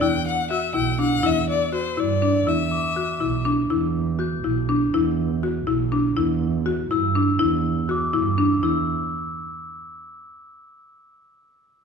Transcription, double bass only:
0.01 0.22 E2 medium
0.75 1.17 B1 medium
1.23 1.45 E2 medium
1.98 2.40 G2 medium
2.47 2.68 E2 medium
3.21 3.63 B1 medium
3.70 4.33 E2 medium
4.44 4.86 B1 medium
4.94 5.56 E2 medium
5.67 6.09 B1 medium
6.17 6.79 E2 medium
6.91 7.32 G2 medium
7.40 8.02 E2 medium
8.14 8.55 G2 medium
8.63 8.86 E2 medium

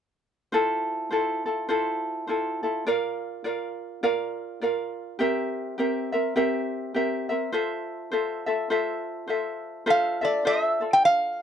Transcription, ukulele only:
0.52 1.11 E4 medium
0.52 1.11 F4 medium
0.52 1.11 A4 medium
0.52 1.09 C5 medium
1.11 1.46 E4 medium
1.11 1.46 F4 soft
1.11 1.44 A4 medium
1.11 1.46 C5 medium
1.46 1.68 E4 soft
1.46 1.68 F4 soft
1.46 1.69 A4 soft
1.69 2.28 E4 medium
1.69 2.28 F4 medium
1.69 2.28 A4 medium
1.69 2.26 C5 medium
2.27 2.63 E4 medium
2.27 2.63 F4 soft
2.27 2.62 A4 medium
2.27 2.63 C5 soft
2.63 2.87 E4 soft
2.63 2.86 F4 soft
2.63 2.86 A4 soft
2.87 3.44 F4 medium
2.87 3.45 A#4 medium
2.87 3.43 D5 medium
2.87 3.45 F5 medium
3.44 4.02 F4 medium
3.44 4.03 A#4 medium
3.44 4.02 D5 medium
3.44 4.03 F5 medium
4.03 4.61 F4 medium
4.03 4.62 A#4 medium
4.03 4.60 D5 medium
4.03 4.62 F5 medium
4.61 5.19 F4 medium
4.61 5.20 A#4 medium
4.61 5.18 D5 medium
4.61 5.20 F5 medium
5.19 5.78 C4 medium
5.19 5.77 G4 medium
5.19 5.78 A#4 medium
5.19 5.79 E5 medium
5.78 6.13 C4 medium
5.78 6.13 G4 medium
5.78 6.12 A#4 medium
5.78 6.11 E5 medium
6.12 6.35 C4 soft
6.12 6.35 A#4 soft
6.12 6.36 E5 soft
6.36 6.95 C4 medium
6.36 6.93 G4 medium
6.36 6.95 A#4 medium
6.36 6.96 E5 medium
6.94 7.30 C4 medium
6.94 7.30 G4 medium
6.94 7.29 A#4 soft
6.94 7.28 E5 medium
7.29 7.53 C4 soft
7.29 7.53 A#4 soft
7.29 7.53 E5 soft
7.52 8.12 F4 medium
7.52 8.12 A4 medium
7.52 8.11 C5 medium
7.52 8.13 E5 medium
8.12 8.47 F4 medium
8.12 8.46 A4 medium
8.12 8.47 C5 medium
8.12 8.45 E5 medium
8.46 8.69 F4 soft
8.46 8.70 A4 soft
8.46 8.70 E5 soft
8.70 9.28 F4 medium
8.70 9.29 A4 medium
8.70 9.27 C5 medium
8.70 9.29 E5 medium
9.28 9.86 F4 soft
9.28 9.87 A4 medium
9.28 9.86 C5 soft
9.28 9.87 E5 medium
9.86 10.21 F4 medium
9.86 10.21 A4 medium
9.86 10.21 C5 medium
9.86 10.20 E5 medium
10.21 10.44 F4 soft
10.21 10.45 A4 soft
10.21 10.45 E5 soft
10.45 10.80 F4 medium
10.45 10.79 A4 medium
10.45 10.80 C5 medium
10.45 10.81 E5 medium
10.81 11.42 F4 soft
10.81 11.42 A4 soft

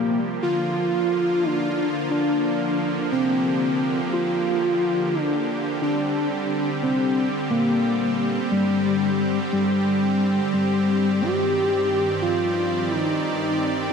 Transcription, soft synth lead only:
0.00 0.20 A#3 medium
0.43 1.45 F4 loud
1.44 1.88 D4 loud
2.11 2.99 D4 loud
3.12 4.00 C4 loud
4.13 5.16 F4 loud
5.14 5.59 D4 medium
5.82 6.69 D4 loud
6.83 7.27 C4 loud
7.50 8.38 A#3 loud
8.52 9.39 G3 loud
9.53 10.40 G3 loud
10.54 11.23 G3 medium
11.21 12.09 G4 loud
12.22 12.91 F4 loud
12.90 13.77 D#4 loud

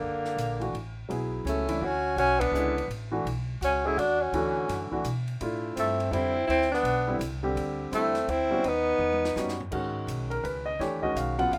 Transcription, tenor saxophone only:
0.00 0.75 A#3 medium
1.48 1.86 A3 medium
1.85 2.18 C#4 medium
2.19 2.42 C#4 loud
2.40 2.90 B3 medium
3.64 3.88 C#4 loud
3.87 4.00 E4 loud
3.99 4.23 D4 medium
4.21 4.92 C#4 medium
5.79 6.14 A3 medium
6.13 6.49 C4 medium
6.50 6.71 C4 loud
6.74 7.19 B3 medium
7.94 8.31 A3 loud
8.30 8.70 C4 medium
8.68 9.61 B3 loud

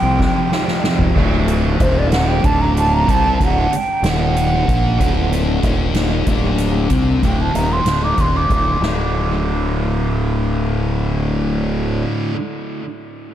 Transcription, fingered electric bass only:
0.02 0.27 C2 medium
1.00 1.12 F1 medium
1.16 1.76 D1 medium
1.80 2.40 D#1 loud
2.44 3.04 D1 medium
3.08 3.37 C2 medium
3.40 3.69 D1 medium
3.71 muted fingered electric bass stroke soft
4.02 4.63 D#1 medium
4.68 4.97 A#1 medium
5.00 5.59 D1 medium
5.63 6.23 D#1 medium
6.27 6.86 D1 medium
6.90 7.20 C2 medium
7.23 7.52 D1 medium
7.54 7.84 D#1 medium
7.85 8.15 D1 medium
8.18 8.47 D#1 medium
8.50 8.80 D1 medium
8.80 12.03 D1 medium

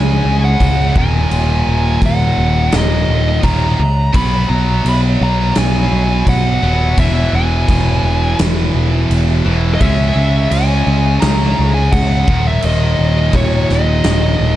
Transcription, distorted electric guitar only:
0.00 0.94 C#3 medium
0.00 0.95 G#3 loud
0.00 0.96 C#4 loud
0.95 3.41 D#2 loud
0.95 3.42 A#2 loud
0.95 3.43 D#3 medium
3.43 3.77 D#2 medium
3.43 3.78 A#2 medium
3.43 3.78 D#3 medium
4.13 6.60 B2 loud
4.13 6.61 F#3 loud
4.13 6.61 B3 loud
6.63 6.97 B2 medium
6.63 6.96 F#3 medium
6.63 6.96 B3 medium
6.98 9.44 E2 medium
6.98 9.44 B2 medium
6.98 9.44 E3 loud
9.45 9.80 E2 medium
9.45 9.79 B2 medium
9.45 9.79 E3 medium
9.80 12.26 C#3 medium
9.80 12.27 G#3 medium
9.80 12.27 C#4 loud
12.28 14.56 D#2 medium
12.28 14.56 A#2 loud
12.28 14.56 D#3 loud

